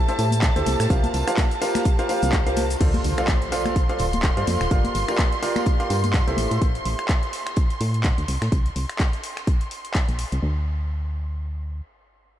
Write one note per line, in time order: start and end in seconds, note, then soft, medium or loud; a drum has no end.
0.00 2.82 A5 medium
0.08 0.22 E4 medium
0.08 0.22 G4 medium
0.08 0.22 A4 medium
0.08 0.22 C5 medium
0.08 0.22 E5 loud
0.08 closed hi-hat soft
0.08 cabasa soft
0.18 0.50 A2 loud
0.18 closed hi-hat medium
0.18 open hi-hat loud
0.18 tambourine medium
0.31 closed hi-hat soft
0.31 tambourine soft
0.31 high conga medium
0.31 cabasa medium
0.42 kick loud
0.42 snare loud
0.42 clap loud
0.42 closed hi-hat medium
0.42 tambourine soft
0.42 cabasa medium
0.56 0.64 D2 medium
0.56 0.88 E4 medium
0.56 0.88 G4 medium
0.56 0.88 A4 medium
0.56 0.88 C5 medium
0.56 0.88 E5 loud
0.56 closed hi-hat soft
0.56 cabasa soft
0.66 0.76 C2 medium
0.66 closed hi-hat medium
0.66 open hi-hat loud
0.66 tambourine medium
0.66 high conga medium
0.80 0.87 A2 medium
0.80 finger snap medium
0.80 snare medium
0.80 closed hi-hat soft
0.80 tambourine soft
0.80 cabasa medium
0.90 1.08 C2 loud
0.90 1.24 F4 medium
0.90 1.24 G4 medium
0.90 1.24 A#4 medium
0.90 1.24 C5 medium
0.90 1.24 F5 medium
0.90 kick loud
0.90 closed hi-hat medium
0.90 tambourine soft
0.90 cabasa medium
1.04 closed hi-hat soft
1.04 high conga medium
1.04 cabasa soft
1.14 1.24 C2 medium
1.14 closed hi-hat medium
1.14 open hi-hat loud
1.14 tambourine medium
1.27 1.41 F4 medium
1.27 1.41 G4 medium
1.27 1.41 A#4 medium
1.27 1.41 C5 medium
1.27 1.41 F5 medium
1.27 finger snap medium
1.27 closed hi-hat soft
1.27 tambourine medium
1.27 cabasa medium
1.37 kick loud
1.37 snare loud
1.37 clap loud
1.37 closed hi-hat medium
1.37 tambourine soft
1.37 high conga medium
1.37 cabasa medium
1.51 closed hi-hat soft
1.51 cabasa soft
1.62 1.86 F4 loud
1.62 1.86 G4 medium
1.62 1.86 A#4 medium
1.62 1.86 C5 loud
1.62 1.86 F5 loud
1.62 closed hi-hat medium
1.62 open hi-hat loud
1.62 tambourine medium
1.75 finger snap medium
1.75 snare medium
1.75 closed hi-hat soft
1.75 tambourine soft
1.75 high conga loud
1.75 cabasa medium
1.85 kick loud
1.85 closed hi-hat medium
1.85 tambourine soft
1.85 cabasa medium
1.99 2.07 F4 medium
1.99 2.07 G4 medium
1.99 2.07 A#4 medium
1.99 2.07 C5 medium
1.99 2.07 F5 loud
1.99 closed hi-hat soft
1.99 cabasa soft
2.09 2.33 F4 loud
2.09 2.33 G4 medium
2.09 2.33 A#4 medium
2.09 2.33 C5 medium
2.09 2.33 F5 loud
2.09 closed hi-hat medium
2.09 open hi-hat loud
2.09 tambourine loud
2.22 2.76 C2 loud
2.22 closed hi-hat soft
2.22 tambourine medium
2.22 high conga medium
2.22 cabasa medium
2.33 kick loud
2.33 clap loud
2.33 closed hi-hat medium
2.33 cabasa medium
2.47 2.60 F4 medium
2.47 2.60 G4 medium
2.47 2.60 A#4 medium
2.47 2.60 C5 medium
2.47 2.60 F5 loud
2.47 closed hi-hat soft
2.47 cabasa soft
2.56 closed hi-hat medium
2.56 open hi-hat loud
2.56 tambourine medium
2.56 high conga medium
2.70 closed hi-hat soft
2.70 tambourine medium
2.70 cabasa medium
2.80 2.99 D2 loud
2.80 3.15 F4 medium
2.80 3.15 A4 medium
2.80 3.15 C5 medium
2.80 3.15 D5 medium
2.80 3.15 F5 medium
2.80 10.44 C6 medium
2.80 kick loud
2.80 closed hi-hat medium
2.80 tambourine soft
2.80 crash medium
2.80 impact medium
2.94 closed hi-hat soft
2.94 high conga medium
3.04 3.14 D2 medium
3.04 closed hi-hat medium
3.04 open hi-hat loud
3.04 tambourine medium
3.18 3.32 F4 medium
3.18 3.32 A4 medium
3.18 3.32 C5 medium
3.18 3.32 D5 medium
3.18 3.32 F5 medium
3.18 finger snap medium
3.18 closed hi-hat soft
3.18 tambourine medium
3.27 kick loud
3.27 snare loud
3.27 clap loud
3.27 closed hi-hat medium
3.27 tambourine soft
3.27 high conga medium
3.42 closed hi-hat soft
3.52 3.76 F4 loud
3.52 3.76 A4 medium
3.52 3.76 C5 medium
3.52 3.76 D5 medium
3.52 3.76 F5 loud
3.52 snare soft
3.52 closed hi-hat medium
3.52 open hi-hat loud
3.52 tambourine loud
3.65 finger snap medium
3.65 closed hi-hat soft
3.65 tambourine medium
3.65 high conga loud
3.76 kick loud
3.76 closed hi-hat medium
3.76 tambourine soft
3.89 4.03 F4 medium
3.89 4.03 A4 medium
3.89 4.03 C5 medium
3.89 4.03 D5 medium
3.89 4.03 F5 loud
3.89 closed hi-hat soft
3.99 4.31 D1 loud
3.99 closed hi-hat medium
3.99 open hi-hat loud
3.99 tambourine medium
4.13 closed hi-hat soft
4.13 tambourine medium
4.13 high conga medium
4.23 kick loud
4.23 snare loud
4.23 clap loud
4.23 closed hi-hat medium
4.23 tambourine soft
4.37 4.44 G2 medium
4.37 4.69 F4 medium
4.37 4.69 A4 medium
4.37 4.69 C5 medium
4.37 4.69 D5 medium
4.37 4.69 F5 medium
4.37 closed hi-hat soft
4.47 4.57 F2 medium
4.47 closed hi-hat medium
4.47 open hi-hat loud
4.47 tambourine medium
4.47 high conga loud
4.61 4.68 D1 medium
4.61 finger snap medium
4.61 snare soft
4.61 closed hi-hat soft
4.61 tambourine medium
4.71 4.89 G1 medium
4.71 5.05 F4 medium
4.71 5.05 G4 medium
4.71 5.05 A#4 medium
4.71 5.05 D5 medium
4.71 5.05 F5 medium
4.71 kick loud
4.71 closed hi-hat medium
4.71 tambourine soft
4.84 closed hi-hat soft
4.84 high conga medium
4.95 5.05 G1 medium
4.95 closed hi-hat medium
4.95 open hi-hat loud
4.95 tambourine medium
5.08 5.22 F4 medium
5.08 5.22 G4 medium
5.08 5.22 A#4 medium
5.08 5.22 D5 medium
5.08 5.22 F5 medium
5.08 finger snap medium
5.08 closed hi-hat soft
5.08 tambourine medium
5.18 kick loud
5.18 snare loud
5.18 clap loud
5.18 closed hi-hat medium
5.18 tambourine soft
5.18 high conga medium
5.32 closed hi-hat soft
5.42 5.67 F4 loud
5.42 5.67 G4 medium
5.42 5.67 A#4 medium
5.42 5.67 D5 medium
5.42 5.67 F5 loud
5.42 closed hi-hat medium
5.42 open hi-hat loud
5.42 tambourine loud
5.56 finger snap medium
5.56 snare soft
5.56 closed hi-hat soft
5.56 tambourine medium
5.56 high conga medium
5.66 kick loud
5.66 closed hi-hat medium
5.66 tambourine soft
5.80 5.94 F4 medium
5.80 5.94 G4 medium
5.80 5.94 A#4 medium
5.80 5.94 D5 medium
5.80 5.94 F5 loud
5.80 closed hi-hat soft
5.90 6.22 G2 loud
5.90 closed hi-hat medium
5.90 open hi-hat loud
5.90 tambourine medium
6.04 closed hi-hat soft
6.04 tambourine medium
6.04 high conga medium
6.14 kick loud
6.14 snare loud
6.14 clap loud
6.14 closed hi-hat medium
6.14 tambourine soft
6.27 6.35 C2 medium
6.27 6.59 E4 medium
6.27 6.59 G4 medium
6.27 6.59 A4 medium
6.27 6.59 C5 medium
6.27 6.59 E5 medium
6.27 closed hi-hat soft
6.37 6.48 A1 medium
6.37 closed hi-hat medium
6.37 open hi-hat loud
6.37 tambourine medium
6.37 high conga medium
6.51 6.59 A2 medium
6.51 closed hi-hat soft
6.51 tambourine medium
6.62 6.80 A1 loud
6.62 kick loud
6.62 closed hi-hat medium
6.75 closed hi-hat soft
6.85 6.95 A1 medium
6.85 closed hi-hat medium
6.85 open hi-hat loud
6.99 finger snap medium
6.99 closed hi-hat soft
7.09 kick loud
7.09 snare loud
7.09 clap loud
7.09 closed hi-hat medium
7.23 closed hi-hat soft
7.33 snare soft
7.33 closed hi-hat medium
7.33 open hi-hat loud
7.47 finger snap medium
7.47 closed hi-hat soft
7.56 kick loud
7.56 closed hi-hat medium
7.70 closed hi-hat soft
7.81 8.12 A2 loud
7.81 closed hi-hat medium
7.81 open hi-hat loud
7.94 closed hi-hat soft
8.04 kick loud
8.04 snare loud
8.04 clap loud
8.04 closed hi-hat medium
8.18 8.25 D2 medium
8.18 closed hi-hat soft
8.28 8.38 C2 medium
8.28 closed hi-hat medium
8.28 open hi-hat loud
8.42 8.49 A2 medium
8.42 finger snap medium
8.42 snare medium
8.42 closed hi-hat soft
8.52 8.70 C2 medium
8.52 kick loud
8.52 closed hi-hat medium
8.66 closed hi-hat soft
8.76 8.86 C2 medium
8.76 closed hi-hat medium
8.76 open hi-hat loud
8.90 finger snap medium
8.90 closed hi-hat soft
8.99 kick loud
8.99 snare loud
8.99 clap loud
8.99 closed hi-hat medium
9.13 closed hi-hat soft
9.23 closed hi-hat medium
9.23 open hi-hat loud
9.37 finger snap medium
9.37 snare soft
9.37 closed hi-hat soft
9.47 kick loud
9.47 closed hi-hat medium
9.61 closed hi-hat soft
9.71 closed hi-hat medium
9.71 open hi-hat loud
9.85 closed hi-hat soft
9.94 kick loud
9.94 snare loud
9.94 clap loud
9.94 closed hi-hat medium
10.08 10.25 A#1 medium
10.08 closed hi-hat soft
10.19 closed hi-hat medium
10.19 open hi-hat loud
10.32 10.40 C2 medium
10.32 closed hi-hat soft
10.43 11.81 D2 medium